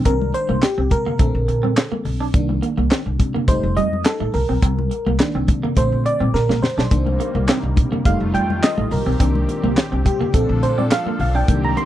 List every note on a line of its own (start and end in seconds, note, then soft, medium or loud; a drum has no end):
0.00 0.58 D#3 medium
0.00 0.59 A#3 soft
0.00 0.59 D4 medium
0.05 0.30 C2 medium
0.05 0.14 C4 medium
0.05 0.32 A#4 loud
0.05 kick loud
0.05 closed hi-hat medium
0.21 high conga medium
0.34 0.61 C5 loud
0.34 muted clean electric guitar stroke soft
0.34 closed hi-hat medium
0.49 0.61 C2 loud
0.49 0.57 A#3 medium
0.49 high conga medium
0.62 0.92 G4 medium
0.62 snare loud
0.62 clap medium
0.62 closed hi-hat medium
0.62 muted conga soft
0.78 0.89 C2 medium
0.78 0.86 C4 medium
0.91 1.15 C3 medium
0.91 1.73 A#4 medium
0.91 muted clean electric guitar stroke soft
0.91 kick loud
0.91 closed hi-hat medium
0.91 high conga medium
1.06 1.14 A#3 medium
1.06 low conga medium
1.19 1.32 A#1 loud
1.19 2.30 D3 medium
1.19 1.29 A3 medium
1.19 2.30 C4 medium
1.19 2.30 A4 soft
1.19 kick loud
1.19 closed hi-hat medium
1.19 low conga medium
1.35 1.46 A#1 loud
1.48 1.72 A#2 loud
1.48 muted clean electric guitar stroke soft
1.48 closed hi-hat medium
1.63 1.71 C4 medium
1.63 high conga medium
1.77 snare loud
1.77 clap medium
1.77 closed hi-hat medium
1.77 muted conga soft
1.92 2.00 A#3 medium
1.92 muted conga soft
1.92 high conga medium
2.05 2.29 B1 medium
2.05 muted clean electric guitar stroke soft
2.05 open hi-hat medium
2.05 low conga medium
2.20 2.28 D4 medium
2.33 2.58 C2 loud
2.33 3.44 D#3 medium
2.33 3.44 A#3 medium
2.33 3.45 D4 medium
2.33 kick loud
2.33 closed hi-hat medium
2.33 muted conga soft
2.49 muted clean electric guitar stroke soft
2.49 high conga medium
2.62 2.71 A#3 medium
2.62 closed hi-hat medium
2.77 2.89 C2 medium
2.77 2.85 A#3 medium
2.77 high conga medium
2.91 3.00 C4 medium
2.91 snare loud
2.91 clap medium
2.91 closed hi-hat medium
3.06 3.18 C2 medium
3.06 muted clean electric guitar stroke soft
3.19 3.44 C3 loud
3.19 kick medium
3.19 closed hi-hat medium
3.19 high conga medium
3.35 3.43 A#3 medium
3.35 low conga medium
3.48 3.61 F1 loud
3.48 4.30 G3 medium
3.48 4.30 A3 soft
3.48 4.30 D#4 medium
3.48 3.78 C5 loud
3.48 kick loud
3.48 closed hi-hat medium
3.48 low conga medium
3.63 3.75 F1 loud
3.77 4.01 F2 loud
3.77 3.86 G3 medium
3.77 4.06 D#5 loud
3.77 closed hi-hat medium
3.93 high conga medium
4.05 4.35 A4 medium
4.05 snare loud
4.05 clap medium
4.05 closed hi-hat medium
4.20 4.32 A1 medium
4.20 4.28 A3 medium
4.20 muted conga soft
4.20 high conga medium
4.34 4.47 C2 medium
4.34 5.16 A#4 medium
4.34 muted clean electric guitar stroke soft
4.34 open hi-hat medium
4.34 low conga medium
4.49 4.61 B1 medium
4.49 4.57 C4 medium
4.62 4.87 C2 loud
4.62 4.71 C4 medium
4.62 kick loud
4.62 closed hi-hat medium
4.79 muted conga soft
4.79 high conga medium
4.91 muted clean electric guitar stroke soft
4.91 closed hi-hat medium
5.06 5.18 C2 medium
5.06 5.14 A#3 medium
5.06 high conga medium
5.19 5.74 D#3 medium
5.19 5.74 A#3 soft
5.19 5.74 D4 medium
5.19 snare loud
5.19 clap medium
5.19 closed hi-hat medium
5.34 5.46 C2 medium
5.34 5.43 C4 medium
5.34 muted conga soft
5.48 5.73 C3 medium
5.48 muted clean electric guitar stroke soft
5.48 kick loud
5.48 closed hi-hat medium
5.48 high conga medium
5.63 5.71 A#3 medium
5.63 low conga medium
5.76 5.90 A#1 medium
5.76 6.58 D3 medium
5.76 5.86 A3 medium
5.76 6.59 A3 soft
5.76 6.59 C4 medium
5.76 6.07 C5 medium
5.76 kick loud
5.76 closed hi-hat medium
5.76 muted conga soft
5.76 low conga medium
5.92 6.03 A#2 medium
6.06 6.35 D5 loud
6.06 muted clean electric guitar stroke soft
6.06 closed hi-hat medium
6.20 6.32 A#2 loud
6.20 6.28 C4 medium
6.20 high conga medium
6.34 6.47 A#2 medium
6.34 6.63 A#4 medium
6.34 snare medium
6.49 6.60 A#1 medium
6.49 6.57 A#3 medium
6.49 snare medium
6.49 muted conga soft
6.49 high conga medium
6.62 7.44 C5 medium
6.62 muted clean electric guitar stroke soft
6.62 snare medium
6.62 low conga medium
6.78 6.89 B1 medium
6.78 6.86 D4 medium
6.78 snare loud
6.91 7.15 C2 loud
6.91 8.04 C3 medium
6.91 8.04 D#3 medium
6.91 8.01 D#3 medium
6.91 8.89 G3 medium
6.91 8.04 A#3 medium
6.91 8.01 A#3 medium
6.91 8.02 D4 medium
6.91 kick loud
6.91 closed hi-hat medium
6.91 muted conga soft
7.06 muted clean electric guitar stroke soft
7.06 high conga medium
7.20 7.29 A#3 medium
7.20 closed hi-hat medium
7.35 7.46 C2 medium
7.35 7.43 A#3 medium
7.35 high conga medium
7.48 7.57 C4 medium
7.48 snare loud
7.48 clap medium
7.48 closed hi-hat medium
7.63 7.79 C2 medium
7.63 muted clean electric guitar stroke soft
7.63 muted conga soft
7.76 8.01 C3 loud
7.76 kick loud
7.76 closed hi-hat medium
7.76 high conga medium
7.92 8.00 A#3 medium
7.92 low conga medium
8.05 8.18 F1 loud
8.05 10.32 D#3 medium
8.05 8.87 G3 medium
8.05 8.87 A3 medium
8.05 8.90 A3 medium
8.05 8.88 D#4 medium
8.05 8.90 F4 medium
8.05 8.18 F5 loud
8.05 kick loud
8.05 closed hi-hat medium
8.05 low conga medium
8.20 8.32 F1 loud
8.20 muted conga soft
8.34 8.58 F2 medium
8.34 8.43 G3 medium
8.34 8.64 G5 loud
8.34 closed hi-hat medium
8.50 high conga medium
8.63 8.92 D#5 loud
8.63 snare loud
8.63 clap loud
8.63 closed hi-hat medium
8.78 8.89 A1 medium
8.78 8.86 A3 medium
8.78 muted conga soft
8.78 high conga medium
8.90 9.04 C2 loud
8.90 11.85 A#2 medium
8.90 10.32 C4 medium
8.90 10.32 G4 medium
8.90 9.73 A#4 medium
8.90 muted clean electric guitar stroke soft
8.90 open hi-hat medium
8.90 low conga medium
9.06 9.18 B1 medium
9.06 9.14 C4 medium
9.20 9.44 C2 loud
9.20 10.01 D#3 medium
9.20 10.02 A#3 soft
9.20 9.29 C4 medium
9.20 10.02 D4 medium
9.20 kick loud
9.20 closed hi-hat medium
9.35 muted conga soft
9.35 high conga medium
9.49 muted clean electric guitar stroke soft
9.49 closed hi-hat medium
9.63 9.75 C2 loud
9.63 9.71 A#3 medium
9.63 high conga medium
9.77 snare loud
9.77 clap medium
9.77 closed hi-hat medium
9.77 muted conga soft
9.92 10.04 C2 medium
9.92 10.00 C4 medium
10.05 10.30 C3 loud
10.05 10.35 G4 medium
10.05 muted clean electric guitar stroke soft
10.05 kick medium
10.05 closed hi-hat medium
10.05 high conga medium
10.21 10.28 A#3 medium
10.21 low conga medium
10.34 10.47 A#1 medium
10.34 10.72 D3 medium
10.34 11.47 F3 medium
10.34 10.43 A3 medium
10.34 10.73 A3 medium
10.34 10.73 C4 medium
10.34 11.47 D4 medium
10.34 11.47 A4 medium
10.34 10.64 A4 medium
10.34 kick loud
10.34 closed hi-hat medium
10.34 low conga medium
10.49 10.60 A#1 loud
10.63 10.87 A#2 loud
10.63 10.78 C5 medium
10.63 muted clean electric guitar stroke soft
10.63 closed hi-hat medium
10.78 10.86 C4 medium
10.78 10.84 D5 medium
10.78 high conga medium
10.91 11.18 F5 loud
10.91 snare loud
10.91 clap loud
10.91 closed hi-hat medium
11.06 11.14 A#3 medium
11.06 muted conga soft
11.06 high conga medium
11.20 11.44 B1 medium
11.20 11.36 F5 medium
11.20 muted clean electric guitar stroke soft
11.20 open hi-hat medium
11.20 low conga medium
11.35 11.43 D4 medium
11.35 11.65 G5 medium
11.48 11.73 C2 loud
11.48 11.85 D#3 medium
11.48 11.85 A#3 medium
11.48 11.85 C4 medium
11.48 11.85 D4 medium
11.48 11.85 G4 medium
11.48 kick loud
11.48 closed hi-hat medium
11.48 muted conga soft
11.64 11.77 A#5 loud
11.64 muted clean electric guitar stroke soft
11.64 high conga medium
11.77 11.85 A#3 medium
11.77 11.85 C6 loud
11.77 closed hi-hat medium